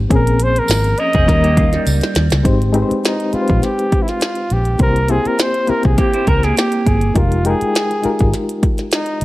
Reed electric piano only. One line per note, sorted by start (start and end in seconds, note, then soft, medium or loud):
0.00 0.09 F3 medium
0.00 0.12 G#3 medium
0.00 0.10 C4 medium
0.00 0.13 D#4 medium
0.00 0.12 G4 medium
0.09 1.13 F3 medium
0.09 1.13 A#3 medium
0.09 1.14 C4 medium
0.09 1.14 C#4 medium
0.09 1.15 G#4 medium
1.26 1.34 F3 medium
1.26 2.31 A#3 medium
1.26 2.31 C#4 medium
1.26 2.32 D#4 medium
1.26 2.32 A#4 loud
1.33 2.34 G3 medium
2.43 2.70 G#3 medium
2.43 2.70 C4 medium
2.43 2.71 D#4 medium
2.43 2.71 G4 medium
2.43 2.71 C5 medium
2.73 3.26 G#3 medium
2.73 3.26 C4 medium
2.73 3.26 D#4 medium
2.73 3.27 G4 medium
2.73 2.82 B4 medium
2.82 3.30 C5 medium
3.33 4.37 G#3 medium
3.33 4.37 C4 medium
3.33 4.37 D#4 medium
3.33 4.38 G4 medium
3.33 3.41 B4 medium
3.41 4.41 C5 medium
4.79 5.05 A#3 medium
4.79 5.06 C4 medium
4.79 5.06 E4 medium
4.79 5.06 G4 medium
4.79 5.07 C5 medium
5.09 5.61 A#3 medium
5.09 5.62 C4 medium
5.09 5.62 E4 medium
5.09 5.62 G4 medium
5.09 5.62 C5 medium
5.67 6.72 A#3 medium
5.67 6.72 C4 medium
5.67 6.72 E4 medium
5.67 6.73 G4 medium
5.67 6.73 C5 medium
7.15 7.41 G#3 medium
7.15 7.41 D#4 medium
7.15 7.42 F4 medium
7.15 7.42 G4 medium
7.15 7.42 A#4 medium
7.44 7.96 G#3 medium
7.44 7.97 D#4 medium
7.44 7.97 F4 medium
7.44 7.98 A#4 medium
7.44 7.97 G5 medium
8.02 9.07 G#3 medium
8.02 9.07 D#4 medium
8.02 9.08 F4 medium
8.02 9.08 G4 medium
8.02 9.08 A#4 medium